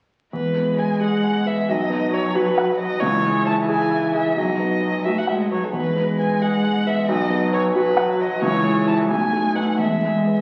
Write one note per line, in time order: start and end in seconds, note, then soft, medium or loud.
0.33 1.64 E2 soft
0.33 1.72 G#3 soft
0.33 0.80 B4 medium
0.57 0.93 B3 soft
0.78 1.15 B4 soft
0.78 1.01 G#5 medium
1.01 1.37 G#4 soft
1.01 1.48 F#5 medium
1.24 1.60 G#5 soft
1.46 1.69 B4 soft
1.46 1.71 E5 medium
1.69 2.98 B1 soft
1.69 3.02 F#3 soft
1.69 2.15 D#5 medium
1.90 2.26 B3 soft
2.14 2.49 B4 soft
2.14 2.36 C#5 medium
2.35 2.71 F#4 medium
2.35 2.78 B4 medium
2.58 2.93 F#5 soft
2.79 3.02 B4 soft
2.79 3.02 D#5 medium
3.00 4.33 C#2 medium
3.00 4.35 E3 medium
3.00 3.46 C#5 medium
3.25 3.60 G#3 medium
3.46 3.83 E5 soft
3.46 3.54 A5 medium
3.69 4.05 G#4 medium
3.69 4.14 G#5 medium
3.91 4.28 E5 soft
4.14 4.37 G#4 soft
4.14 4.39 E5 medium
4.36 5.70 B1 soft
4.36 5.00 F#3 soft
4.36 5.05 D#5 medium
4.59 4.96 B3 soft
4.80 5.18 B4 soft
5.05 5.15 A3 medium
5.05 5.42 F#4 soft
5.05 5.20 E5 medium
5.18 5.28 F#5 medium
5.27 5.51 G#3 soft
5.27 5.33 E5 soft
5.27 5.65 F#5 soft
5.42 5.46 D#5 soft
5.51 5.59 F#3 soft
5.51 5.74 B4 soft
5.51 5.66 C#5 medium
5.64 5.73 A4 soft
5.73 7.04 E2 soft
5.73 7.11 G#3 soft
5.73 6.18 B4 medium
5.96 6.33 B3 soft
6.19 6.55 B4 soft
6.19 6.44 G#5 medium
6.41 6.77 G#4 soft
6.41 6.88 F#5 medium
6.64 7.00 G#5 soft
6.87 7.09 B4 soft
6.87 7.08 E5 medium
7.09 8.38 B1 medium
7.09 7.76 F#3 medium
7.09 7.52 D#5 medium
7.30 7.66 B3 soft
7.53 7.88 B4 soft
7.53 7.62 C#5 medium
7.75 8.42 F#3 medium
7.75 8.11 F#4 medium
7.75 8.22 B4 medium
7.97 8.33 F#5 medium
8.19 8.42 B4 soft
8.19 8.42 D#5 medium
8.42 9.07 C#2 medium
8.42 9.10 E3 medium
8.42 8.86 C#5 medium
8.63 8.99 G#3 soft
8.87 9.07 E4 soft
8.87 9.07 E5 soft
8.87 8.95 A5 medium
9.08 9.76 B1 medium
9.08 9.82 A3 medium
9.08 9.57 G#5 medium
9.33 9.70 A3 soft
9.55 9.76 D#4 soft
9.55 9.76 B4 soft
9.55 9.79 F#5 medium
9.78 10.41 E2 soft
9.78 10.41 G#3 soft
9.78 10.41 E5 medium
10.03 10.40 G#3 soft
10.27 10.41 B4 soft